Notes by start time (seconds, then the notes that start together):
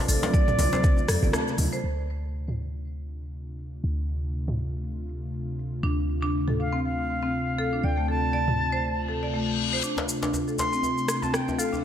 Already playing: C3 A3 C4 F4
0.08 A1 A4 D5, open hi-hat, djembe tone, shaker
0.23 djembe slap, high conga, shaker
0.34 D5, kick, high conga, shaker
0.48 mid tom, djembe tone, shaker
0.59 C2, open hi-hat, djembe slap, high conga, low conga, shaker
0.73 C5, djembe slap, djembe tone, high conga, shaker
0.84 kick, low conga, shaker
0.97 djembe tone, shaker
1.08 F2 A4, cross-stick, open hi-hat, high conga, shaker
1.23 A1 D5, low conga, shaker
1.33 A3, cross-stick, djembe tone, shaker
1.48 shaker
1.58 D2, open hi-hat, high conga, djembe tone, low conga, shaker
1.73 C5, shaker
1.84 D2 C3 A3 D4 F4, shaker
1.98 shaker
2.09 shaker
2.23 shaker
2.34 shaker
2.48 mid tom
2.59 shaker
2.73 shaker
2.84 shaker
2.98 shaker
3.09 shaker
3.23 shaker
3.34 shaker
3.48 shaker
3.59 shaker
3.73 shaker
3.84 D2, shaker
3.98 shaker
4.09 shaker
4.23 shaker
4.34 shaker
4.48 mid tom, shaker
4.59 shaker
4.73 shaker
4.84 shaker
4.98 shaker
5.09 shaker
5.23 shaker
5.34 shaker
5.48 shaker
5.59 shaker
5.73 shaker
5.83 D2 C4 D4
5.98 shaker
6.09 shaker
6.23 D4
6.34 shaker
6.48 A4, mid tom
6.59 F5, shaker
6.73 C4
6.84 F5, shaker
7.09 shaker
7.22 C4
7.34 shaker
7.59 A4
7.73 D4
7.84 D2 D5 G5
7.98 A3
8.08 A4 A5, shaker
8.33 D5
8.48 mid tom
8.59 shaker
8.72 C5
8.83 reverse cymbal
9.08 A4, shaker
9.23 D5
9.34 A3
9.59 shaker
9.73 C5
9.83 C3 A3 D4 F4, riser, shaker
9.97 djembe slap, djembe tone, shaker
10.09 shaker
10.23 D4, djembe slap, shaker
10.34 djembe tone, shaker
10.48 A4, shaker
10.58 C6, djembe slap, djembe tone, shaker
10.73 C4, shaker
10.83 djembe tone, shaker
10.98 shaker
11.08 cross-stick, shaker
11.22 C4 A5, djembe tone, shaker
11.33 G5, cross-stick, shaker
11.48 djembe tone, shaker
11.59 A4 F5, shaker
11.73 D4, djembe tone, shaker